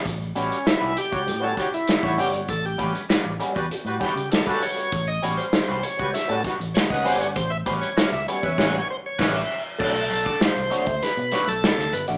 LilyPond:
<<
  \new Staff \with { instrumentName = "Tonewheel organ" } { \time 4/4 \key a \mixolydian \tempo 4 = 98 r8 cis'8 e'8 g'8. a'16 g'16 e'8. g'8 | a'16 g'8 r4. r16 g'8 a'8 cis''8~ | cis''16 dis''16 cis''16 c''8. cis''8 e''16 a'8 r16 cis''16 dis''16 c''16 cis''16 | c''16 e''16 c''16 cis''8 e''16 cis''8. cis''16 c''16 cis''8 e''8 r16 |
a'4 c''4 b'8. a'8. b'8 | }
  \new Staff \with { instrumentName = "Horn section" } { \time 4/4 \key a \mixolydian r4. r16 <g fis' cis''>16 r16 <g fis' cis''>16 <g fis' cis''>16 r8 <g cis'' fis''>8. | r4. r16 <g fis' b'>16 r16 <g fis' b'>16 <g fis' b'>16 r8 <g fis' b'>8. | r4. r16 <g fis' b'>16 r16 <g fis' b'>16 <g fis' b'>16 r8 <cis' b' fis''>8. | r4. r16 <cis' b' e''>16 <cis' b' e''>8 r8 <cis' b' e''>8 r8 |
r1 | }
  \new Staff \with { instrumentName = "Clean electric guitar" } { \time 4/4 \key a \mixolydian r8 <g cis' fis' b'>16 r8 <g cis' fis' b'>16 r8. <g cis' fis' b'>16 r4 <g cis' fis' b'>16 r16 | r8 <g cis' fis' b'>16 r16 <g cis' fis' b'>16 r16 <g cis' fis' b'>16 r8. <g cis' fis' b'>16 r8 <g cis' fis' b'>16 r8 | r8 <g cis' fis' b'>16 r8 <g cis' fis' b'>16 r8. <g cis' fis' b'>16 r4 <g cis' fis' b'>16 r16 | r8 <g cis' fis' b'>16 r16 <g cis' fis' b'>16 r16 <g cis' fis' b'>16 r16 <g cis' fis' b'>8 r8 <g cis' fis' b'>8 r8 |
<a d' fis' cis''>16 r8 <a d' fis' d''>16 r8 <a d' fis' cis''>16 r8. <a d' fis' cis''>16 r4 <a d' fis' d''>16 | }
  \new Staff \with { instrumentName = "Fingered electric bass" } { \clef bass \time 4/4 \key a \mixolydian a,,8 a,,16 r8 c,16 r16 cis,16 a,8 r8. a,,16 fis,,16 g,,16 | a,,8 a,,16 r8 a,,16 r16 e,16 r16 a,16 r16 cis16 r4 | a,,8 a,,16 r8 c,16 r16 cis,16 r16 a,16 r16 a,,16 r16 cis,16 fis,,16 g,,16 | a,,8 a,,16 r8 cis,16 r16 e,16 a,,8 r8 a,,8 r8 |
b,,8 b,,16 r8 c,16 r16 d,16 r16 b,16 r16 b,,16 r16 d,16 g,,16 a,,16 | }
  \new DrumStaff \with { instrumentName = "Drums" } \drummode { \time 4/4 <hh bd>16 hh16 hh16 hh16 <hh sn>8 hh16 <hh bd>16 hh8 <hh bd sn>16 hh16 <hh sn>16 <bd sn>16 hho16 hh16 | <hh bd>16 hh16 <hh bd>16 hh16 <hh sn>8 hh16 <hh bd>16 hh16 hh16 <hh bd sn>16 hh16 <hh sn>16 <hh bd sn>16 hho16 hh16 | <hh bd>8 hh16 hh16 <hh sn>16 hh16 hh16 <hh bd>16 <hh sn>16 hh16 <hh bd sn>16 hh16 <hh sn>16 <bd sn>16 hho16 hh16 | <hh bd>8 <hh bd>16 hh16 <hh sn>16 hh16 hh16 <hh bd>16 <cymc bd sn>4 <cymc bd sn>4 |
<cymc bd>16 hh16 hh16 <hh bd>16 sn16 hh16 hh16 <hh bd>16 <hh sn>16 hh16 <hh sn>16 hh16 sn16 sn16 hh16 hh16 | }
>>